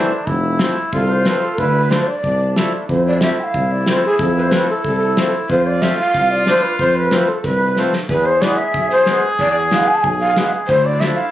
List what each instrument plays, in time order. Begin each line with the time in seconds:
Already playing: accordion E3 A3 C4, trombone D4
0.27 tuba F1, trombone E4, kick
0.59 accordion F3 A3 C4, snare
0.93 tuba C2, trombone F4, shakuhachi A4, kick
1.09 shakuhachi C5
1.25 accordion F3 A3 C4, shakuhachi B4, snare
1.42 shakuhachi A4
1.58 tuba D2, trombone E4, shakuhachi B4, kick
1.90 accordion F3 A3 D4, shakuhachi C5, snare
2.07 shakuhachi D5
2.23 tuba C2, trombone D4, kick
2.56 accordion F3 A3 E4, snare
2.88 tuba F2, trombone E4, shakuhachi C5, kick
3.06 shakuhachi D5
3.21 accordion F3 A3 C4, shakuhachi E5, snare
3.40 shakuhachi F5 G#5
3.54 tuba C2, kick
3.72 shakuhachi D5
3.86 accordion F3 A3 C4, shakuhachi C5, snare
4.05 shakuhachi G#4
4.19 tuba F2, shakuhachi A4, kick
4.37 shakuhachi B4
4.43 shakuhachi C5
4.51 accordion F3 A3 C4, shakuhachi B4, snare
4.70 shakuhachi A4
4.84 tuba C2, shakuhachi A4, kick
5.17 accordion F3 A3 C4, snare
5.49 tuba F2, trombone F4, shakuhachi C5, kick
5.67 shakuhachi D5
5.82 accordion F3 A3 C4, shakuhachi E5, snare
5.98 shakuhachi F5
6.14 tuba C2, kick
6.31 shakuhachi D5
6.46 accordion F3 A3 D4, shakuhachi C5, snare
6.63 shakuhachi B4
6.79 tuba F2, shakuhachi C5, kick
6.96 shakuhachi B4
7.11 accordion F3 A3 C4, snare
7.28 shakuhachi A4
7.44 tuba C2, shakuhachi B4, kick, snare
7.77 accordion F3 A3 C4, snare
7.93 snare
8.09 tuba E2, trombone G#4, shakuhachi B4, kick
8.26 shakuhachi C5
8.41 accordion E3 G#3 B3, shakuhachi D5, snare
8.57 shakuhachi E5
8.74 tuba B1, kick
8.90 shakuhachi C5, snare
9.06 accordion E3 G#3 B3, snare
9.39 tuba E2, shakuhachi D5, kick
9.71 accordion E3 G#3 B3, shakuhachi F5, snare
9.88 shakuhachi G#5
9.95 shakuhachi A5
10.01 tuba B1, shakuhachi G#5, kick
10.20 shakuhachi F5
10.36 accordion E3 G#3 B3, snare
10.68 tuba D2, trombone E4, shakuhachi C5, kick
10.85 shakuhachi D5
11.00 accordion F3 A3 D4, shakuhachi E5, snare
11.17 shakuhachi F5